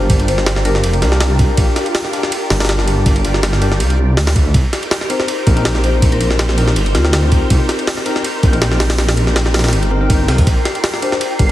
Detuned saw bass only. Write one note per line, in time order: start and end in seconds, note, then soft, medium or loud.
0.00 0.82 G1 medium
0.84 1.04 F1 medium
1.02 1.48 C2 medium
1.58 1.67 A#1 loud
2.51 3.82 G1 medium
3.80 4.19 C2 medium
4.17 4.53 D2 loud
4.54 4.63 C2 loud
5.47 6.75 A#1 medium
6.76 6.97 G1 medium
6.95 7.40 D2 medium
7.51 7.59 C2 loud
8.43 9.74 A#1 medium
9.73 10.27 G1 loud
10.29 10.45 C2 medium
10.47 10.56 A#1 loud
11.39 11.52 G1 medium